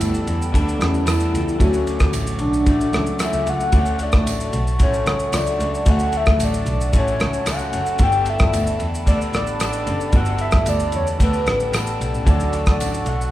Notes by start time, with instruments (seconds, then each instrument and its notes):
Already playing: clean electric guitar D3 G3 B3 D4 A4, synth keys G3 A3 B3 D4 A4, soft synth lead E4, ambient pad A4 G5 A5 B5
0.00 double bass D2, ride, tambourine, shaker
0.14 shaker
0.26 double bass E2, ride, shaker
0.42 shaker
0.52 double bass D2, clean electric guitar G3 B3 D4 A4, soft synth lead D4, kick, ride, shaker
0.68 shaker
0.79 double bass E2, synth keys G3 A3 B3 D4 E4, soft synth lead C#4, cross-stick, ride, shaker
0.94 shaker
1.06 double bass E2, clean electric guitar G3 B3 D4, soft synth lead E4, cross-stick, ride, tambourine, shaker
1.10 clean electric guitar A4
1.20 shaker
1.33 double bass C#2, ride, shaker
1.49 shaker
1.58 double bass D2, clean electric guitar D3 F#3 A3, synth keys F#3 A3 C#4 D4 A4, soft synth lead F#4, ambient pad F#5 C#6 D6, kick, ride, shaker
1.64 clean electric guitar C#4
1.74 shaker
1.87 ride, shaker
1.99 double bass D2, kick, cross-stick, shaker
2.13 double bass A1, ride, tambourine, shaker
2.27 shaker
2.39 double bass B1, soft synth lead D4, ride, shaker
2.54 shaker
2.66 double bass A1, clean electric guitar D3 F#3 A3, kick, ride, shaker
2.81 shaker
2.92 double bass C#2, synth keys F#3 A3 C#4 D4 A4, cross-stick, ride, shaker
3.06 shaker
3.19 clean electric guitar D3 F#3 A3, cross-stick, ride, tambourine, shaker
3.23 clean electric guitar C#4, soft synth lead E5
3.33 double bass C#2, shaker
3.46 double bass C#2, soft synth lead F#5, ride, shaker
3.60 shaker
3.72 double bass D2, clean electric guitar D3 F#3 A3 C#4, ambient pad A4 F#5 A5 C#6, kick, ride, shaker
3.86 shaker
3.99 clean electric guitar F#3 A3, soft synth lead D5, ride, shaker
4.12 double bass D2, kick, cross-stick, shaker
4.26 double bass A1, ride, tambourine, shaker
4.40 shaker
4.53 double bass B1, ride, shaker
4.67 shaker
4.79 double bass A1, clean electric guitar D3 F#3 A3 C#4, soft synth lead C#5, kick, ride, shaker
4.94 shaker
5.05 double bass C#2, soft synth lead C#5, cross-stick, ride, shaker
5.19 shaker
5.32 double bass C#2, clean electric guitar D3 F#3 A3, soft synth lead D5, cross-stick, ride, tambourine, shaker
5.47 shaker
5.59 double bass C#2, ride, shaker
5.75 shaker
5.85 double bass D2, clean electric guitar D3 F#3 A3 C#4, kick, ride, shaker
5.90 soft synth lead F#5
5.99 shaker
6.13 clean electric guitar F#3 A3, ride, shaker
6.17 soft synth lead E5
6.26 double bass D2, kick, cross-stick, shaker
6.39 double bass A1, ride, tambourine, shaker
6.44 soft synth lead D5
6.54 shaker
6.66 double bass B1, ride, shaker
6.81 shaker
6.92 double bass A1, clean electric guitar D3 F#3 A3 C#4, kick, ride, shaker
6.98 soft synth lead C#5
7.08 shaker
7.20 double bass C#2, cross-stick, ride, shaker
7.33 shaker
7.46 double bass C#2, clean electric guitar D3 F#3 A3, cross-stick, ride, tambourine, shaker
7.50 clean electric guitar C#4, soft synth lead F#5
7.59 shaker
7.72 double bass F#1, ride, shaker
7.86 shaker
7.99 double bass G1, clean electric guitar G3 B3 D4 A4, ambient pad G5 B5, kick, ride, shaker
8.03 soft synth lead G5
8.12 shaker
8.26 clean electric guitar D4 A4, soft synth lead E5, ride, shaker
8.30 clean electric guitar B3
8.39 double bass G1, kick, cross-stick, shaker
8.53 double bass D2, ride, tambourine, shaker
8.67 shaker
8.79 double bass E2, ride, shaker
8.95 shaker
9.06 double bass D2, clean electric guitar G3 B3 D4 A4, soft synth lead D5, kick, ride, shaker
9.21 shaker
9.33 double bass A1, soft synth lead D5, cross-stick, ride, shaker
9.47 shaker
9.59 double bass A1, clean electric guitar G3 B3 D4 A4, soft synth lead D5, cross-stick, ride, tambourine, shaker
9.73 shaker
9.87 double bass F#1, ride, shaker
10.01 shaker
10.12 double bass G1, clean electric guitar G3 B3 D4, soft synth lead F#5, kick, ride, shaker
10.18 clean electric guitar A4
10.26 shaker
10.38 soft synth lead E5, ride, shaker
10.52 double bass G1, kick, cross-stick, shaker
10.66 double bass D2, soft synth lead D5, ride, tambourine, shaker
10.80 shaker
10.92 double bass E2, soft synth lead C#5, ride, shaker
11.07 shaker
11.20 double bass D2, clean electric guitar G3 B3 D4 A4, soft synth lead B4, kick, ride, shaker
11.34 shaker
11.46 double bass A1, cross-stick, ride, shaker
11.60 shaker
11.72 double bass A1, clean electric guitar G3 B3 D4 A4, cross-stick, ride, tambourine, shaker
11.87 shaker
12.00 double bass B1, ride, shaker
12.13 double bass A1, shaker
12.25 double bass D2, clean electric guitar D3 C#4 F#4 A4, synth keys E3 A3 D4 A4, ambient pad F#5 C#6, kick, ride, shaker
12.29 synth keys F#3, soft synth lead D5
12.40 shaker
12.52 clean electric guitar F#4 A4, ride, shaker
12.66 double bass D2, kick, cross-stick, shaker
12.71 soft synth lead D5
12.80 double bass A1, ride, tambourine, shaker
12.94 shaker
13.06 double bass B1, soft synth lead F#5, ride, shaker
13.21 shaker